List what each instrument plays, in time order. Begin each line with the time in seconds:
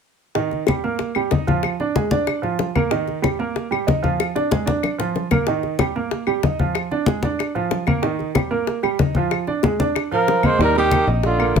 0.35 grand piano D#3 D#4, high bongo, high conga
0.51 high bongo, high conga
0.67 grand piano G3 G4, high bongo, high conga, claves
0.84 grand piano A#3 A#4, high conga
0.99 high bongo, high conga
1.15 grand piano G3 G4, high bongo, high conga, claves
1.31 grand piano D#4 D#5, high bongo, low bongo, high conga
1.47 grand piano F3 F4, high bongo, high conga
1.63 high bongo, high conga, claves
1.80 grand piano D4 D5, high bongo, high conga
1.95 grand piano G#3 G#4, high bongo, high conga
2.11 grand piano D4 D5, high conga
2.27 high bongo, high conga, claves
2.42 grand piano F3 F4, high bongo, high conga
2.59 high bongo, low bongo, high conga
2.75 grand piano A#3 A#4, high bongo, high conga, claves
2.91 grand piano D#3 D#4, high bongo, high conga
3.08 high bongo, high conga
3.22 grand piano G3 G4, high bongo, high conga, claves
3.39 grand piano A#3 A#4, high conga
3.56 high bongo, high conga
3.71 grand piano G3 G4, high bongo, high conga, claves
3.87 grand piano D#4 D#5, high bongo, low bongo, high conga
4.03 grand piano F3 F4, high bongo, high conga
4.20 high bongo, high conga, claves
4.35 grand piano D4 D5, high bongo, high conga
4.51 grand piano G#3 G#4, high bongo, high conga
4.66 grand piano D4 D5, low bongo, high conga
4.83 low bongo, high conga, claves
4.98 grand piano F3 F4, low bongo, high conga
5.15 low bongo, high conga
5.31 grand piano A#3 A#4, low bongo, high conga, claves
5.47 grand piano D#3 D#4, high bongo, high conga
5.63 high bongo, high conga
5.79 grand piano G3 G4, high bongo, high conga, claves
5.96 grand piano A#3 A#4, high conga
6.11 high bongo, high conga
6.27 grand piano G3 G4, high bongo, high conga, claves
6.43 grand piano D#4 D#5, high bongo, low bongo, high conga
6.59 grand piano F3 F4, high bongo, high conga
6.75 high bongo, high conga, claves
6.91 grand piano D4 D5, high bongo, high conga
7.06 grand piano G#3 G#4, high bongo, high conga
7.23 grand piano D4 D5, high conga
7.39 high bongo, high conga, claves
7.55 grand piano F3 F4, high bongo, high conga
7.71 high bongo, low bongo, high conga
7.87 grand piano A#3 A#4, high bongo, high conga, claves
8.02 grand piano D#3 D#4, high bongo, high conga
8.19 high bongo, high conga
8.35 grand piano G3 G4, high bongo, high conga, claves
8.51 grand piano A#3 A#4, high conga
8.67 high bongo, high conga
8.83 grand piano G3 G4, high bongo, high conga, claves
8.99 grand piano D#4 D#5, high bongo, low bongo, high conga
9.15 grand piano F3 F4, high bongo, high conga
9.31 high bongo, high conga, claves
9.47 grand piano D4 D5, high bongo, high conga
9.63 grand piano G#3 G#4, high bongo, high conga
9.80 grand piano D4 D5, high conga
9.96 high bongo, high conga, claves
10.11 grand piano F3 F4, tenor saxophone F3, trumpet A#4, high bongo, high conga
10.28 high bongo, low bongo, high conga
10.43 tenor saxophone G#3, grand piano A#3 A#4, trumpet C5, high bongo, high conga, claves
10.59 fingered electric bass D#2, grand piano D#3 D#4, tenor saxophone G3, high bongo, high conga
10.63 trumpet A#4
10.75 tenor saxophone D#3, grand piano G3 G4, trumpet G4, high bongo, high conga
10.91 high bongo, high conga, claves
11.07 fingered electric bass A#1, grand piano D#4 D#5, high conga
11.23 tenor saxophone D3, trumpet F4, high bongo, high conga
11.39 grand piano A#3 A#4, high bongo, high conga, claves
11.55 fingered electric bass G1, high bongo, low bongo, high conga